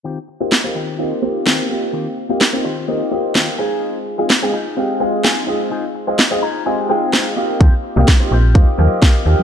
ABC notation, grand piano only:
X:1
M:4/4
L:1/16
Q:"Swing 16ths" 1/4=127
K:Eb
V:1 name="Grand piano"
z3 [B,CEFG] z [B,CEFG] z2 [B,CEFG]2 [B,CEFG]2 [B,CEG] z [B,CEFG]2- | [B,CEFG]3 [B,CEFG] z [B,CEFG] z2 [B,CEFG]2 [B,CEFG]2 [B,EFG] z [A,CEFA]2- | [A,CEFA]3 [A,CEFA] z [A,CEFA] z2 [A,CEFG]2 [A,CEFA]2 [A,CEFA] z [A,CEFA]2- | [A,CEFA]3 [A,CEFA] z [A,CEFA] z2 [A,CEFG]2 [A,CEFA]2 [A,CEFA] z [B,CEFG]2- |
[B,CEFG]3 [B,CEFG] z [B,CEFG] z2 [B,CEFG]2 [B,CEFG]2 [B,EG] z [B,CEFG]2 |]